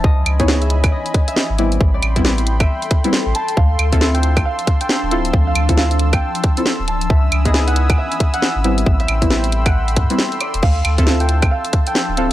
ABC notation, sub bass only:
X:1
M:4/4
L:1/16
Q:"Swing 16ths" 1/4=136
K:Dm
V:1 name="Sub bass" clef=bass
^C,,2 C,,6 z4 z ^G,,,3 | A,,,2 A,,,6 z4 z A,,, z2 | D,,2 D,,6 z4 z D,,,3 | D,,2 D,,6 z4 z D,,,3 |
^C,,2 C,,6 z4 z ^G,,,3 | A,,,2 A,,,8 A,, z4 E,,, | D,,2 D,,6 z4 z D,,,3 |]